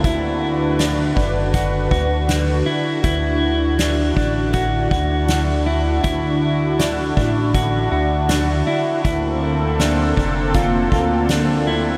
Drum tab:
HH |x-x-x-x-|x-x-x-x-|x-x-x-x-|x-x-x-x-|
SD |--o---o-|--o---o-|--o---o-|--o---o-|
BD |o--ooo--|o--ooo--|o--oo---|o--ooo--|